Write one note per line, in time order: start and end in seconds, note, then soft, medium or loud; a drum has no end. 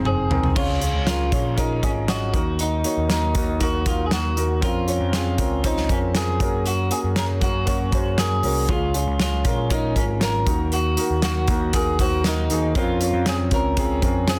0.00 0.27 F1 medium
0.00 0.57 G#2 medium
0.00 0.05 C4 medium
0.00 0.05 D#4 medium
0.00 0.06 G#4 medium
0.00 0.32 A#4 medium
0.00 0.07 C5 medium
0.05 0.25 C4 medium
0.05 0.26 D#4 medium
0.05 0.26 G#4 medium
0.05 0.53 G#4 medium
0.05 0.26 C5 medium
0.05 mid tom medium
0.30 0.54 C2 medium
0.30 0.51 C4 medium
0.30 0.51 D#4 medium
0.30 0.51 G#4 medium
0.30 0.52 A#4 medium
0.30 floor tom medium
0.43 floor tom medium
0.55 0.91 C#2 medium
0.55 1.28 C#3 soft
0.55 0.76 C#4 medium
0.55 0.76 F4 medium
0.55 1.06 F4 medium
0.55 0.77 G#4 medium
0.55 0.77 C#5 medium
0.55 kick loud
0.55 crash medium
0.80 1.01 C#4 medium
0.80 1.02 F4 medium
0.80 1.02 G#4 medium
0.80 1.02 C#5 medium
0.80 closed hi-hat medium
0.94 1.30 C#2 medium
1.06 1.27 C#4 medium
1.06 1.27 F4 medium
1.06 1.59 F4 medium
1.06 1.27 G#4 medium
1.06 1.28 A#4 medium
1.06 snare medium
1.06 closed hi-hat medium
1.31 1.79 A#1 medium
1.31 1.52 C#4 medium
1.31 1.53 F4 medium
1.31 1.53 G#4 medium
1.31 1.53 C#5 medium
1.31 kick medium
1.31 closed hi-hat medium
1.56 1.77 C#4 medium
1.56 1.83 D#4 medium
1.56 1.78 F4 medium
1.56 1.78 G#4 medium
1.56 1.78 A#4 loud
1.56 kick medium
1.56 closed hi-hat medium
1.82 2.30 G#1 medium
1.82 2.03 C#4 medium
1.82 1.90 C#4 medium
1.82 2.03 F4 medium
1.82 2.03 G#4 medium
1.82 2.04 D#5 medium
1.82 kick medium
1.82 closed hi-hat medium
2.07 2.28 C#4 medium
2.07 2.29 F4 medium
2.07 2.61 F#4 medium
2.07 2.29 G#4 medium
2.07 2.29 D#5 medium
2.07 snare medium
2.07 closed hi-hat medium
2.33 2.81 D#2 medium
2.33 3.06 D#3 medium
2.33 2.74 A#3 medium
2.33 2.75 D#4 medium
2.33 2.75 F#4 medium
2.33 2.75 A#4 medium
2.33 kick medium
2.33 closed hi-hat medium
2.59 3.10 D#4 medium
2.59 closed hi-hat medium
2.83 3.04 A#3 medium
2.83 3.05 D#4 medium
2.83 3.05 F#4 medium
2.83 3.05 C#5 medium
2.83 closed hi-hat medium
2.97 3.33 D#2 medium
3.08 3.30 A#3 medium
3.08 3.30 D#4 medium
3.08 3.63 D#4 medium
3.08 3.30 F#4 medium
3.08 3.31 A#4 medium
3.08 snare medium
3.08 closed hi-hat medium
3.33 3.83 D#2 medium
3.33 3.55 A#3 medium
3.33 3.55 D#4 medium
3.33 3.55 F#4 medium
3.33 3.56 A#4 medium
3.33 kick medium
3.33 closed hi-hat medium
3.59 3.80 A#3 medium
3.59 3.81 D#4 medium
3.59 3.81 F#4 medium
3.59 3.87 F#4 medium
3.59 3.82 A#4 loud
3.59 kick medium
3.59 closed hi-hat medium
3.85 4.33 D#2 medium
3.85 4.06 A#3 medium
3.85 4.06 D#4 medium
3.85 4.06 F4 medium
3.85 4.07 F#4 medium
3.85 4.07 A#4 medium
3.85 kick medium
3.85 closed hi-hat medium
4.06 4.12 G#4 medium
4.11 4.32 A#3 medium
4.11 4.32 D#4 medium
4.11 4.32 F#4 medium
4.11 4.60 F#4 medium
4.11 4.33 A#4 medium
4.11 snare loud
4.11 closed hi-hat medium
4.36 4.61 D#2 medium
4.36 4.57 A#3 medium
4.36 4.57 D#4 medium
4.36 4.58 F#4 medium
4.36 4.58 A#4 medium
4.36 closed hi-hat medium
4.61 4.98 F2 medium
4.61 4.82 C4 medium
4.61 4.82 C#4 medium
4.61 4.83 F4 medium
4.61 5.13 F4 medium
4.61 4.83 A#4 medium
4.61 kick loud
4.61 closed hi-hat medium
4.87 5.08 C4 medium
4.87 5.08 C#4 medium
4.87 5.08 F4 medium
4.87 5.09 C#5 medium
4.87 closed hi-hat medium
5.00 5.36 F2 medium
5.12 5.33 C4 medium
5.12 5.33 C#4 medium
5.12 5.34 F4 medium
5.12 5.66 F4 medium
5.12 5.34 G#4 medium
5.12 snare medium
5.12 closed hi-hat medium
5.37 5.86 C#2 medium
5.37 5.58 C4 medium
5.37 5.59 C#4 medium
5.37 5.59 F4 medium
5.37 5.59 A#4 medium
5.37 kick medium
5.37 closed hi-hat medium
5.63 5.84 C4 medium
5.63 5.84 C#4 medium
5.63 5.91 D#4 medium
5.63 5.85 F4 medium
5.63 5.85 C5 medium
5.63 kick medium
5.63 closed hi-hat medium
5.77 snare soft
5.89 6.37 F2 medium
5.89 6.09 C4 medium
5.89 6.10 C#4 medium
5.89 5.98 C#4 medium
5.89 6.10 F4 medium
5.89 6.10 A#4 medium
5.89 kick medium
5.89 closed hi-hat medium
6.13 6.35 C4 medium
6.13 6.35 C#4 medium
6.13 6.35 F4 medium
6.13 6.66 G#4 medium
6.13 6.36 A#4 medium
6.13 snare loud
6.13 closed hi-hat medium
6.39 6.88 F#2 medium
6.39 6.81 A#3 medium
6.39 6.81 C#4 medium
6.39 6.81 F#4 medium
6.39 6.82 A#4 medium
6.39 kick medium
6.39 closed hi-hat medium
6.66 6.90 F#4 medium
6.66 closed hi-hat medium
6.90 7.11 A#3 medium
6.90 7.11 C#4 medium
6.90 7.12 F#4 medium
6.90 7.12 G#4 medium
6.90 6.99 G#4 medium
6.90 closed hi-hat medium
7.04 7.39 F#2 medium
7.15 7.36 A#3 medium
7.15 7.37 C#4 medium
7.15 7.37 F#4 medium
7.15 7.37 G#4 medium
7.15 7.24 A#4 medium
7.15 snare medium
7.15 closed hi-hat medium
7.40 7.89 F#2 medium
7.40 7.62 A#3 medium
7.40 7.62 C#4 medium
7.40 7.62 F#4 medium
7.40 8.18 F#4 medium
7.40 7.62 A#4 medium
7.40 kick medium
7.40 closed hi-hat medium
7.66 7.87 A#3 medium
7.66 7.87 C#4 medium
7.66 7.87 F#4 medium
7.66 7.88 C#5 medium
7.66 kick medium
7.66 closed hi-hat medium
7.91 8.40 F#2 medium
7.91 8.12 A#3 medium
7.91 8.13 C#4 medium
7.91 8.13 F#4 medium
7.91 8.13 C5 medium
7.91 kick medium
7.91 closed hi-hat medium
8.17 8.38 A#3 medium
8.17 8.38 C#4 medium
8.17 8.39 F#4 medium
8.17 8.70 G#4 medium
8.17 8.39 A#4 medium
8.17 snare loud
8.17 closed hi-hat medium
8.43 8.67 C2 medium
8.43 8.64 A#3 medium
8.43 8.64 C#4 medium
8.43 8.64 F#4 medium
8.43 8.64 A#4 medium
8.43 open hi-hat medium
8.68 9.04 C#2 loud
8.68 9.41 C#3 medium
8.68 8.89 G#3 medium
8.68 8.89 C#4 medium
8.68 8.89 F4 medium
8.68 9.19 F4 medium
8.68 8.90 G#4 medium
8.68 kick medium
8.68 closed hi-hat medium
8.94 9.15 G#3 medium
8.94 9.15 C#4 medium
8.94 9.15 F4 medium
8.94 9.15 G#4 medium
8.94 closed hi-hat medium
9.07 9.42 C#2 medium
9.19 9.40 G#3 medium
9.19 9.40 C#4 medium
9.19 9.67 F4 medium
9.19 9.41 F4 medium
9.19 9.41 G#4 medium
9.19 snare loud
9.19 closed hi-hat medium
9.44 9.92 A#1 medium
9.44 9.65 G#3 medium
9.44 9.65 C#4 medium
9.44 9.66 F4 medium
9.44 9.66 A#4 medium
9.44 kick medium
9.44 closed hi-hat medium
9.69 9.90 G#3 medium
9.69 9.91 C#4 medium
9.69 9.96 D#4 medium
9.69 9.91 F4 medium
9.69 9.91 A#4 medium
9.69 kick medium
9.69 closed hi-hat medium
9.95 10.43 G#1 medium
9.95 10.16 G#3 medium
9.95 10.16 C#4 medium
9.95 10.03 C#4 medium
9.95 10.16 F4 medium
9.95 10.17 A#4 medium
9.95 kick medium
9.95 closed hi-hat medium
10.20 10.41 G#3 medium
10.20 10.41 C#4 medium
10.20 10.42 F4 medium
10.20 10.42 A#4 medium
10.20 10.69 A#4 medium
10.20 snare medium
10.20 closed hi-hat medium
10.45 10.94 D#2 medium
10.45 11.19 D#3 medium
10.45 10.87 A#3 medium
10.45 10.87 D#4 medium
10.45 10.88 F#4 medium
10.45 10.88 A#4 medium
10.45 kick loud
10.45 closed hi-hat medium
10.72 11.22 F#4 medium
10.72 closed hi-hat medium
10.97 11.18 A#3 medium
10.97 11.18 D#4 medium
10.97 11.18 F#4 medium
10.97 11.18 A#4 medium
10.97 closed hi-hat medium
11.10 11.46 D#2 medium
11.22 11.43 A#3 medium
11.22 11.43 D#4 medium
11.22 11.44 F#4 medium
11.22 11.74 F#4 medium
11.22 11.44 A#4 medium
11.22 snare medium
11.22 closed hi-hat medium
11.47 11.96 D#2 medium
11.47 11.69 A#3 medium
11.47 11.69 D#4 medium
11.47 11.69 F#4 medium
11.47 11.69 A#4 medium
11.47 kick medium
11.47 closed hi-hat medium
11.73 11.94 A#3 medium
11.73 11.94 D#4 medium
11.73 11.95 F#4 medium
11.73 12.00 G#4 medium
11.73 11.95 A#4 medium
11.73 kick medium
11.73 closed hi-hat medium
11.99 12.46 D#2 medium
11.99 12.19 A#3 medium
11.99 12.20 D#4 medium
11.99 12.20 F#4 medium
11.99 12.24 F#4 medium
11.99 12.20 C5 medium
11.99 kick medium
11.99 closed hi-hat medium
12.24 12.45 A#3 medium
12.24 12.45 D#4 medium
12.24 12.77 D#4 medium
12.24 12.46 F#4 medium
12.24 12.46 A#4 medium
12.24 snare medium
12.24 closed hi-hat medium
12.50 12.74 D#2 medium
12.50 12.71 A#3 medium
12.50 12.71 D#4 medium
12.50 12.71 F#4 medium
12.50 12.71 G#4 medium
12.50 closed hi-hat medium
12.75 13.11 F2 loud
12.75 12.96 C4 medium
12.75 12.96 C#4 medium
12.75 12.96 F4 medium
12.75 13.29 F4 medium
12.75 12.97 A#4 medium
12.75 kick loud
12.75 closed hi-hat medium
13.00 13.21 C4 medium
13.00 13.21 C#4 medium
13.00 13.22 F4 medium
13.00 13.22 C#5 medium
13.00 closed hi-hat medium
13.13 13.49 F2 medium
13.26 13.47 C4 medium
13.26 13.47 C#4 medium
13.26 13.47 F4 medium
13.26 13.35 G#4 medium
13.26 13.48 C5 medium
13.26 snare medium
13.26 closed hi-hat medium
13.51 13.99 C#2 medium
13.51 13.72 C4 medium
13.51 13.72 C#4 medium
13.51 13.72 F4 medium
13.51 14.00 A#4 medium
13.51 13.73 C#5 medium
13.51 kick medium
13.51 closed hi-hat medium
13.77 13.97 C4 medium
13.77 13.98 C#4 medium
13.77 13.98 F4 medium
13.77 13.98 G#4 loud
13.77 kick medium
13.77 closed hi-hat medium
14.02 14.39 F2 medium
14.02 14.23 C4 medium
14.02 14.23 C#4 medium
14.02 14.23 F4 medium
14.02 14.24 A#4 medium
14.02 kick medium
14.02 closed hi-hat medium
14.27 14.39 C4 medium
14.27 14.39 C#4 medium
14.27 14.39 F4 medium
14.27 14.39 G#4 loud
14.27 14.39 C5 medium
14.27 snare loud
14.27 closed hi-hat medium